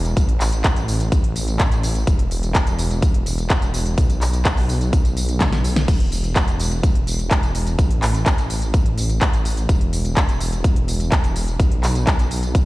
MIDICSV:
0, 0, Header, 1, 3, 480
1, 0, Start_track
1, 0, Tempo, 476190
1, 168, Time_signature, 4, 2, 24, 8
1, 12752, End_track
2, 0, Start_track
2, 0, Title_t, "Detuned saw bass"
2, 0, Program_c, 0, 39
2, 0, Note_on_c, 0, 28, 91
2, 145, Note_off_c, 0, 28, 0
2, 169, Note_on_c, 0, 33, 92
2, 2065, Note_off_c, 0, 33, 0
2, 2089, Note_on_c, 0, 28, 91
2, 3985, Note_off_c, 0, 28, 0
2, 4009, Note_on_c, 0, 35, 90
2, 5905, Note_off_c, 0, 35, 0
2, 5929, Note_on_c, 0, 28, 93
2, 7825, Note_off_c, 0, 28, 0
2, 7849, Note_on_c, 0, 33, 89
2, 9745, Note_off_c, 0, 33, 0
2, 9768, Note_on_c, 0, 28, 91
2, 11664, Note_off_c, 0, 28, 0
2, 11688, Note_on_c, 0, 35, 91
2, 12752, Note_off_c, 0, 35, 0
2, 12752, End_track
3, 0, Start_track
3, 0, Title_t, "Drums"
3, 49, Note_on_c, 9, 42, 38
3, 53, Note_on_c, 9, 54, 33
3, 149, Note_off_c, 9, 42, 0
3, 154, Note_off_c, 9, 54, 0
3, 169, Note_on_c, 9, 36, 117
3, 169, Note_on_c, 9, 42, 66
3, 174, Note_on_c, 9, 54, 48
3, 270, Note_off_c, 9, 36, 0
3, 270, Note_off_c, 9, 42, 0
3, 275, Note_off_c, 9, 54, 0
3, 289, Note_on_c, 9, 42, 40
3, 390, Note_off_c, 9, 42, 0
3, 408, Note_on_c, 9, 39, 60
3, 409, Note_on_c, 9, 46, 103
3, 414, Note_on_c, 9, 54, 81
3, 509, Note_off_c, 9, 39, 0
3, 510, Note_off_c, 9, 46, 0
3, 514, Note_off_c, 9, 54, 0
3, 529, Note_on_c, 9, 42, 40
3, 534, Note_on_c, 9, 54, 36
3, 629, Note_off_c, 9, 42, 0
3, 634, Note_off_c, 9, 54, 0
3, 648, Note_on_c, 9, 39, 111
3, 649, Note_on_c, 9, 36, 118
3, 649, Note_on_c, 9, 42, 65
3, 654, Note_on_c, 9, 54, 47
3, 749, Note_off_c, 9, 39, 0
3, 750, Note_off_c, 9, 36, 0
3, 750, Note_off_c, 9, 42, 0
3, 754, Note_off_c, 9, 54, 0
3, 769, Note_on_c, 9, 42, 42
3, 774, Note_on_c, 9, 54, 35
3, 870, Note_off_c, 9, 42, 0
3, 875, Note_off_c, 9, 54, 0
3, 889, Note_on_c, 9, 46, 105
3, 894, Note_on_c, 9, 54, 80
3, 990, Note_off_c, 9, 46, 0
3, 995, Note_off_c, 9, 54, 0
3, 1009, Note_on_c, 9, 42, 39
3, 1014, Note_on_c, 9, 54, 36
3, 1110, Note_off_c, 9, 42, 0
3, 1115, Note_off_c, 9, 54, 0
3, 1129, Note_on_c, 9, 36, 113
3, 1129, Note_on_c, 9, 42, 67
3, 1133, Note_on_c, 9, 54, 48
3, 1229, Note_off_c, 9, 42, 0
3, 1230, Note_off_c, 9, 36, 0
3, 1234, Note_off_c, 9, 54, 0
3, 1248, Note_on_c, 9, 42, 40
3, 1349, Note_off_c, 9, 42, 0
3, 1368, Note_on_c, 9, 46, 106
3, 1373, Note_on_c, 9, 54, 84
3, 1469, Note_off_c, 9, 46, 0
3, 1474, Note_off_c, 9, 54, 0
3, 1489, Note_on_c, 9, 42, 40
3, 1493, Note_on_c, 9, 54, 37
3, 1589, Note_off_c, 9, 42, 0
3, 1594, Note_off_c, 9, 54, 0
3, 1608, Note_on_c, 9, 39, 115
3, 1609, Note_on_c, 9, 36, 124
3, 1609, Note_on_c, 9, 42, 66
3, 1614, Note_on_c, 9, 54, 46
3, 1709, Note_off_c, 9, 39, 0
3, 1710, Note_off_c, 9, 36, 0
3, 1710, Note_off_c, 9, 42, 0
3, 1714, Note_off_c, 9, 54, 0
3, 1729, Note_on_c, 9, 42, 38
3, 1734, Note_on_c, 9, 54, 34
3, 1830, Note_off_c, 9, 42, 0
3, 1835, Note_off_c, 9, 54, 0
3, 1849, Note_on_c, 9, 46, 107
3, 1853, Note_on_c, 9, 54, 84
3, 1949, Note_off_c, 9, 46, 0
3, 1954, Note_off_c, 9, 54, 0
3, 1969, Note_on_c, 9, 42, 39
3, 1973, Note_on_c, 9, 54, 36
3, 2069, Note_off_c, 9, 42, 0
3, 2074, Note_off_c, 9, 54, 0
3, 2088, Note_on_c, 9, 42, 72
3, 2089, Note_on_c, 9, 36, 118
3, 2093, Note_on_c, 9, 54, 49
3, 2189, Note_off_c, 9, 42, 0
3, 2190, Note_off_c, 9, 36, 0
3, 2194, Note_off_c, 9, 54, 0
3, 2209, Note_on_c, 9, 42, 42
3, 2310, Note_off_c, 9, 42, 0
3, 2329, Note_on_c, 9, 46, 101
3, 2334, Note_on_c, 9, 54, 85
3, 2430, Note_off_c, 9, 46, 0
3, 2435, Note_off_c, 9, 54, 0
3, 2449, Note_on_c, 9, 42, 41
3, 2453, Note_on_c, 9, 54, 36
3, 2550, Note_off_c, 9, 42, 0
3, 2554, Note_off_c, 9, 54, 0
3, 2567, Note_on_c, 9, 39, 120
3, 2568, Note_on_c, 9, 42, 68
3, 2569, Note_on_c, 9, 36, 112
3, 2573, Note_on_c, 9, 54, 50
3, 2668, Note_off_c, 9, 39, 0
3, 2669, Note_off_c, 9, 42, 0
3, 2670, Note_off_c, 9, 36, 0
3, 2674, Note_off_c, 9, 54, 0
3, 2689, Note_on_c, 9, 42, 42
3, 2693, Note_on_c, 9, 54, 35
3, 2789, Note_off_c, 9, 42, 0
3, 2794, Note_off_c, 9, 54, 0
3, 2808, Note_on_c, 9, 46, 101
3, 2813, Note_on_c, 9, 54, 81
3, 2909, Note_off_c, 9, 46, 0
3, 2914, Note_off_c, 9, 54, 0
3, 2928, Note_on_c, 9, 42, 41
3, 2933, Note_on_c, 9, 54, 36
3, 3029, Note_off_c, 9, 42, 0
3, 3034, Note_off_c, 9, 54, 0
3, 3048, Note_on_c, 9, 42, 69
3, 3049, Note_on_c, 9, 36, 114
3, 3053, Note_on_c, 9, 54, 48
3, 3149, Note_off_c, 9, 42, 0
3, 3150, Note_off_c, 9, 36, 0
3, 3154, Note_off_c, 9, 54, 0
3, 3169, Note_on_c, 9, 42, 40
3, 3269, Note_off_c, 9, 42, 0
3, 3288, Note_on_c, 9, 46, 104
3, 3293, Note_on_c, 9, 54, 84
3, 3389, Note_off_c, 9, 46, 0
3, 3394, Note_off_c, 9, 54, 0
3, 3409, Note_on_c, 9, 42, 43
3, 3413, Note_on_c, 9, 54, 36
3, 3510, Note_off_c, 9, 42, 0
3, 3514, Note_off_c, 9, 54, 0
3, 3528, Note_on_c, 9, 39, 118
3, 3529, Note_on_c, 9, 36, 116
3, 3529, Note_on_c, 9, 42, 69
3, 3533, Note_on_c, 9, 54, 48
3, 3629, Note_off_c, 9, 39, 0
3, 3630, Note_off_c, 9, 36, 0
3, 3630, Note_off_c, 9, 42, 0
3, 3634, Note_off_c, 9, 54, 0
3, 3649, Note_on_c, 9, 42, 40
3, 3653, Note_on_c, 9, 54, 33
3, 3749, Note_off_c, 9, 42, 0
3, 3754, Note_off_c, 9, 54, 0
3, 3768, Note_on_c, 9, 46, 104
3, 3773, Note_on_c, 9, 54, 87
3, 3869, Note_off_c, 9, 46, 0
3, 3874, Note_off_c, 9, 54, 0
3, 3889, Note_on_c, 9, 42, 41
3, 3893, Note_on_c, 9, 54, 36
3, 3989, Note_off_c, 9, 42, 0
3, 3994, Note_off_c, 9, 54, 0
3, 4009, Note_on_c, 9, 36, 115
3, 4009, Note_on_c, 9, 42, 71
3, 4013, Note_on_c, 9, 54, 47
3, 4109, Note_off_c, 9, 42, 0
3, 4110, Note_off_c, 9, 36, 0
3, 4114, Note_off_c, 9, 54, 0
3, 4129, Note_on_c, 9, 42, 44
3, 4134, Note_on_c, 9, 54, 33
3, 4230, Note_off_c, 9, 42, 0
3, 4234, Note_off_c, 9, 54, 0
3, 4248, Note_on_c, 9, 39, 63
3, 4249, Note_on_c, 9, 46, 99
3, 4254, Note_on_c, 9, 54, 82
3, 4349, Note_off_c, 9, 39, 0
3, 4350, Note_off_c, 9, 46, 0
3, 4354, Note_off_c, 9, 54, 0
3, 4369, Note_on_c, 9, 42, 44
3, 4373, Note_on_c, 9, 54, 36
3, 4469, Note_off_c, 9, 42, 0
3, 4474, Note_off_c, 9, 54, 0
3, 4488, Note_on_c, 9, 39, 126
3, 4489, Note_on_c, 9, 36, 115
3, 4489, Note_on_c, 9, 42, 69
3, 4493, Note_on_c, 9, 54, 46
3, 4589, Note_off_c, 9, 39, 0
3, 4589, Note_off_c, 9, 42, 0
3, 4590, Note_off_c, 9, 36, 0
3, 4594, Note_off_c, 9, 54, 0
3, 4609, Note_on_c, 9, 46, 59
3, 4614, Note_on_c, 9, 54, 35
3, 4710, Note_off_c, 9, 46, 0
3, 4715, Note_off_c, 9, 54, 0
3, 4729, Note_on_c, 9, 46, 102
3, 4734, Note_on_c, 9, 54, 78
3, 4830, Note_off_c, 9, 46, 0
3, 4834, Note_off_c, 9, 54, 0
3, 4849, Note_on_c, 9, 42, 43
3, 4853, Note_on_c, 9, 54, 35
3, 4949, Note_off_c, 9, 42, 0
3, 4954, Note_off_c, 9, 54, 0
3, 4969, Note_on_c, 9, 36, 117
3, 4969, Note_on_c, 9, 42, 72
3, 4974, Note_on_c, 9, 54, 49
3, 5070, Note_off_c, 9, 36, 0
3, 5070, Note_off_c, 9, 42, 0
3, 5074, Note_off_c, 9, 54, 0
3, 5089, Note_on_c, 9, 42, 41
3, 5094, Note_on_c, 9, 54, 33
3, 5190, Note_off_c, 9, 42, 0
3, 5195, Note_off_c, 9, 54, 0
3, 5209, Note_on_c, 9, 46, 103
3, 5213, Note_on_c, 9, 54, 83
3, 5309, Note_off_c, 9, 46, 0
3, 5314, Note_off_c, 9, 54, 0
3, 5329, Note_on_c, 9, 42, 43
3, 5334, Note_on_c, 9, 54, 35
3, 5430, Note_off_c, 9, 42, 0
3, 5434, Note_off_c, 9, 54, 0
3, 5448, Note_on_c, 9, 39, 119
3, 5449, Note_on_c, 9, 36, 120
3, 5449, Note_on_c, 9, 38, 65
3, 5449, Note_on_c, 9, 42, 70
3, 5454, Note_on_c, 9, 54, 47
3, 5549, Note_off_c, 9, 39, 0
3, 5550, Note_off_c, 9, 36, 0
3, 5550, Note_off_c, 9, 38, 0
3, 5550, Note_off_c, 9, 42, 0
3, 5555, Note_off_c, 9, 54, 0
3, 5569, Note_on_c, 9, 38, 62
3, 5569, Note_on_c, 9, 42, 43
3, 5574, Note_on_c, 9, 54, 33
3, 5670, Note_off_c, 9, 38, 0
3, 5670, Note_off_c, 9, 42, 0
3, 5675, Note_off_c, 9, 54, 0
3, 5689, Note_on_c, 9, 46, 108
3, 5693, Note_on_c, 9, 54, 83
3, 5789, Note_off_c, 9, 46, 0
3, 5794, Note_off_c, 9, 54, 0
3, 5809, Note_on_c, 9, 38, 88
3, 5809, Note_on_c, 9, 42, 42
3, 5814, Note_on_c, 9, 54, 35
3, 5910, Note_off_c, 9, 38, 0
3, 5910, Note_off_c, 9, 42, 0
3, 5915, Note_off_c, 9, 54, 0
3, 5929, Note_on_c, 9, 36, 123
3, 5929, Note_on_c, 9, 42, 70
3, 5929, Note_on_c, 9, 49, 78
3, 5934, Note_on_c, 9, 54, 46
3, 6030, Note_off_c, 9, 36, 0
3, 6030, Note_off_c, 9, 42, 0
3, 6030, Note_off_c, 9, 49, 0
3, 6035, Note_off_c, 9, 54, 0
3, 6049, Note_on_c, 9, 42, 42
3, 6150, Note_off_c, 9, 42, 0
3, 6169, Note_on_c, 9, 46, 104
3, 6174, Note_on_c, 9, 54, 80
3, 6270, Note_off_c, 9, 46, 0
3, 6275, Note_off_c, 9, 54, 0
3, 6289, Note_on_c, 9, 42, 42
3, 6294, Note_on_c, 9, 54, 34
3, 6390, Note_off_c, 9, 42, 0
3, 6395, Note_off_c, 9, 54, 0
3, 6408, Note_on_c, 9, 39, 122
3, 6409, Note_on_c, 9, 36, 116
3, 6409, Note_on_c, 9, 42, 70
3, 6414, Note_on_c, 9, 54, 45
3, 6509, Note_off_c, 9, 39, 0
3, 6510, Note_off_c, 9, 36, 0
3, 6510, Note_off_c, 9, 42, 0
3, 6514, Note_off_c, 9, 54, 0
3, 6529, Note_on_c, 9, 42, 43
3, 6534, Note_on_c, 9, 54, 32
3, 6630, Note_off_c, 9, 42, 0
3, 6634, Note_off_c, 9, 54, 0
3, 6649, Note_on_c, 9, 46, 108
3, 6653, Note_on_c, 9, 54, 80
3, 6749, Note_off_c, 9, 46, 0
3, 6754, Note_off_c, 9, 54, 0
3, 6769, Note_on_c, 9, 42, 43
3, 6773, Note_on_c, 9, 54, 35
3, 6870, Note_off_c, 9, 42, 0
3, 6874, Note_off_c, 9, 54, 0
3, 6889, Note_on_c, 9, 36, 121
3, 6889, Note_on_c, 9, 42, 70
3, 6893, Note_on_c, 9, 54, 45
3, 6989, Note_off_c, 9, 42, 0
3, 6990, Note_off_c, 9, 36, 0
3, 6994, Note_off_c, 9, 54, 0
3, 7009, Note_on_c, 9, 42, 42
3, 7110, Note_off_c, 9, 42, 0
3, 7129, Note_on_c, 9, 46, 106
3, 7133, Note_on_c, 9, 54, 83
3, 7229, Note_off_c, 9, 46, 0
3, 7234, Note_off_c, 9, 54, 0
3, 7249, Note_on_c, 9, 42, 44
3, 7253, Note_on_c, 9, 54, 35
3, 7350, Note_off_c, 9, 42, 0
3, 7354, Note_off_c, 9, 54, 0
3, 7368, Note_on_c, 9, 39, 124
3, 7369, Note_on_c, 9, 36, 122
3, 7369, Note_on_c, 9, 42, 69
3, 7374, Note_on_c, 9, 54, 44
3, 7469, Note_off_c, 9, 39, 0
3, 7470, Note_off_c, 9, 36, 0
3, 7470, Note_off_c, 9, 42, 0
3, 7474, Note_off_c, 9, 54, 0
3, 7489, Note_on_c, 9, 42, 41
3, 7493, Note_on_c, 9, 54, 32
3, 7590, Note_off_c, 9, 42, 0
3, 7594, Note_off_c, 9, 54, 0
3, 7609, Note_on_c, 9, 46, 113
3, 7613, Note_on_c, 9, 54, 78
3, 7709, Note_off_c, 9, 46, 0
3, 7714, Note_off_c, 9, 54, 0
3, 7729, Note_on_c, 9, 42, 42
3, 7734, Note_on_c, 9, 54, 35
3, 7830, Note_off_c, 9, 42, 0
3, 7835, Note_off_c, 9, 54, 0
3, 7849, Note_on_c, 9, 36, 127
3, 7849, Note_on_c, 9, 42, 69
3, 7854, Note_on_c, 9, 54, 45
3, 7949, Note_off_c, 9, 36, 0
3, 7950, Note_off_c, 9, 42, 0
3, 7955, Note_off_c, 9, 54, 0
3, 7969, Note_on_c, 9, 42, 42
3, 8070, Note_off_c, 9, 42, 0
3, 8088, Note_on_c, 9, 39, 64
3, 8089, Note_on_c, 9, 46, 110
3, 8094, Note_on_c, 9, 54, 75
3, 8189, Note_off_c, 9, 39, 0
3, 8190, Note_off_c, 9, 46, 0
3, 8194, Note_off_c, 9, 54, 0
3, 8209, Note_on_c, 9, 42, 40
3, 8213, Note_on_c, 9, 54, 34
3, 8309, Note_off_c, 9, 42, 0
3, 8314, Note_off_c, 9, 54, 0
3, 8328, Note_on_c, 9, 39, 127
3, 8329, Note_on_c, 9, 36, 126
3, 8329, Note_on_c, 9, 42, 65
3, 8333, Note_on_c, 9, 54, 45
3, 8429, Note_off_c, 9, 36, 0
3, 8429, Note_off_c, 9, 39, 0
3, 8429, Note_off_c, 9, 42, 0
3, 8434, Note_off_c, 9, 54, 0
3, 8448, Note_on_c, 9, 42, 43
3, 8453, Note_on_c, 9, 54, 32
3, 8549, Note_off_c, 9, 42, 0
3, 8554, Note_off_c, 9, 54, 0
3, 8568, Note_on_c, 9, 46, 109
3, 8573, Note_on_c, 9, 54, 77
3, 8669, Note_off_c, 9, 46, 0
3, 8673, Note_off_c, 9, 54, 0
3, 8688, Note_on_c, 9, 42, 39
3, 8693, Note_on_c, 9, 54, 33
3, 8789, Note_off_c, 9, 42, 0
3, 8793, Note_off_c, 9, 54, 0
3, 8808, Note_on_c, 9, 42, 70
3, 8809, Note_on_c, 9, 36, 124
3, 8813, Note_on_c, 9, 54, 44
3, 8909, Note_off_c, 9, 36, 0
3, 8909, Note_off_c, 9, 42, 0
3, 8913, Note_off_c, 9, 54, 0
3, 8928, Note_on_c, 9, 42, 40
3, 9029, Note_off_c, 9, 42, 0
3, 9048, Note_on_c, 9, 46, 109
3, 9052, Note_on_c, 9, 54, 78
3, 9149, Note_off_c, 9, 46, 0
3, 9153, Note_off_c, 9, 54, 0
3, 9168, Note_on_c, 9, 42, 43
3, 9173, Note_on_c, 9, 54, 35
3, 9269, Note_off_c, 9, 42, 0
3, 9273, Note_off_c, 9, 54, 0
3, 9287, Note_on_c, 9, 39, 126
3, 9288, Note_on_c, 9, 36, 125
3, 9288, Note_on_c, 9, 42, 66
3, 9293, Note_on_c, 9, 54, 44
3, 9388, Note_off_c, 9, 39, 0
3, 9389, Note_off_c, 9, 36, 0
3, 9389, Note_off_c, 9, 42, 0
3, 9393, Note_off_c, 9, 54, 0
3, 9408, Note_on_c, 9, 42, 41
3, 9413, Note_on_c, 9, 54, 31
3, 9509, Note_off_c, 9, 42, 0
3, 9514, Note_off_c, 9, 54, 0
3, 9528, Note_on_c, 9, 46, 116
3, 9533, Note_on_c, 9, 54, 80
3, 9629, Note_off_c, 9, 46, 0
3, 9634, Note_off_c, 9, 54, 0
3, 9648, Note_on_c, 9, 42, 42
3, 9653, Note_on_c, 9, 54, 32
3, 9749, Note_off_c, 9, 42, 0
3, 9754, Note_off_c, 9, 54, 0
3, 9768, Note_on_c, 9, 36, 127
3, 9768, Note_on_c, 9, 42, 65
3, 9773, Note_on_c, 9, 54, 43
3, 9869, Note_off_c, 9, 36, 0
3, 9869, Note_off_c, 9, 42, 0
3, 9874, Note_off_c, 9, 54, 0
3, 9888, Note_on_c, 9, 42, 40
3, 9989, Note_off_c, 9, 42, 0
3, 10008, Note_on_c, 9, 46, 116
3, 10013, Note_on_c, 9, 54, 77
3, 10109, Note_off_c, 9, 46, 0
3, 10114, Note_off_c, 9, 54, 0
3, 10128, Note_on_c, 9, 42, 40
3, 10133, Note_on_c, 9, 54, 34
3, 10229, Note_off_c, 9, 42, 0
3, 10234, Note_off_c, 9, 54, 0
3, 10248, Note_on_c, 9, 36, 122
3, 10248, Note_on_c, 9, 39, 123
3, 10249, Note_on_c, 9, 42, 66
3, 10253, Note_on_c, 9, 54, 43
3, 10349, Note_off_c, 9, 36, 0
3, 10349, Note_off_c, 9, 39, 0
3, 10349, Note_off_c, 9, 42, 0
3, 10354, Note_off_c, 9, 54, 0
3, 10368, Note_on_c, 9, 42, 41
3, 10373, Note_on_c, 9, 54, 32
3, 10469, Note_off_c, 9, 42, 0
3, 10474, Note_off_c, 9, 54, 0
3, 10488, Note_on_c, 9, 46, 111
3, 10493, Note_on_c, 9, 54, 75
3, 10589, Note_off_c, 9, 46, 0
3, 10594, Note_off_c, 9, 54, 0
3, 10609, Note_on_c, 9, 42, 39
3, 10613, Note_on_c, 9, 54, 33
3, 10709, Note_off_c, 9, 42, 0
3, 10714, Note_off_c, 9, 54, 0
3, 10728, Note_on_c, 9, 36, 124
3, 10729, Note_on_c, 9, 42, 67
3, 10733, Note_on_c, 9, 54, 43
3, 10829, Note_off_c, 9, 36, 0
3, 10829, Note_off_c, 9, 42, 0
3, 10834, Note_off_c, 9, 54, 0
3, 10848, Note_on_c, 9, 42, 39
3, 10949, Note_off_c, 9, 42, 0
3, 10968, Note_on_c, 9, 46, 112
3, 10973, Note_on_c, 9, 54, 76
3, 11069, Note_off_c, 9, 46, 0
3, 11074, Note_off_c, 9, 54, 0
3, 11089, Note_on_c, 9, 42, 41
3, 11093, Note_on_c, 9, 54, 33
3, 11189, Note_off_c, 9, 42, 0
3, 11194, Note_off_c, 9, 54, 0
3, 11208, Note_on_c, 9, 36, 127
3, 11208, Note_on_c, 9, 39, 119
3, 11208, Note_on_c, 9, 42, 65
3, 11213, Note_on_c, 9, 54, 43
3, 11308, Note_off_c, 9, 39, 0
3, 11309, Note_off_c, 9, 36, 0
3, 11309, Note_off_c, 9, 42, 0
3, 11314, Note_off_c, 9, 54, 0
3, 11329, Note_on_c, 9, 42, 39
3, 11333, Note_on_c, 9, 54, 30
3, 11429, Note_off_c, 9, 42, 0
3, 11434, Note_off_c, 9, 54, 0
3, 11449, Note_on_c, 9, 46, 114
3, 11454, Note_on_c, 9, 54, 76
3, 11549, Note_off_c, 9, 46, 0
3, 11554, Note_off_c, 9, 54, 0
3, 11569, Note_on_c, 9, 42, 38
3, 11574, Note_on_c, 9, 54, 33
3, 11670, Note_off_c, 9, 42, 0
3, 11674, Note_off_c, 9, 54, 0
3, 11688, Note_on_c, 9, 36, 127
3, 11689, Note_on_c, 9, 42, 63
3, 11694, Note_on_c, 9, 54, 44
3, 11789, Note_off_c, 9, 36, 0
3, 11790, Note_off_c, 9, 42, 0
3, 11795, Note_off_c, 9, 54, 0
3, 11809, Note_on_c, 9, 42, 39
3, 11910, Note_off_c, 9, 42, 0
3, 11928, Note_on_c, 9, 39, 62
3, 11929, Note_on_c, 9, 46, 110
3, 11934, Note_on_c, 9, 54, 77
3, 12029, Note_off_c, 9, 39, 0
3, 12030, Note_off_c, 9, 46, 0
3, 12035, Note_off_c, 9, 54, 0
3, 12049, Note_on_c, 9, 42, 38
3, 12054, Note_on_c, 9, 54, 33
3, 12150, Note_off_c, 9, 42, 0
3, 12154, Note_off_c, 9, 54, 0
3, 12168, Note_on_c, 9, 39, 121
3, 12169, Note_on_c, 9, 36, 122
3, 12169, Note_on_c, 9, 42, 64
3, 12173, Note_on_c, 9, 54, 43
3, 12269, Note_off_c, 9, 36, 0
3, 12269, Note_off_c, 9, 39, 0
3, 12269, Note_off_c, 9, 42, 0
3, 12274, Note_off_c, 9, 54, 0
3, 12289, Note_on_c, 9, 42, 39
3, 12293, Note_on_c, 9, 54, 32
3, 12389, Note_off_c, 9, 42, 0
3, 12394, Note_off_c, 9, 54, 0
3, 12409, Note_on_c, 9, 46, 111
3, 12413, Note_on_c, 9, 54, 75
3, 12509, Note_off_c, 9, 46, 0
3, 12514, Note_off_c, 9, 54, 0
3, 12528, Note_on_c, 9, 42, 38
3, 12533, Note_on_c, 9, 54, 32
3, 12629, Note_off_c, 9, 42, 0
3, 12634, Note_off_c, 9, 54, 0
3, 12648, Note_on_c, 9, 42, 63
3, 12649, Note_on_c, 9, 36, 125
3, 12653, Note_on_c, 9, 54, 45
3, 12749, Note_off_c, 9, 42, 0
3, 12750, Note_off_c, 9, 36, 0
3, 12752, Note_off_c, 9, 54, 0
3, 12752, End_track
0, 0, End_of_file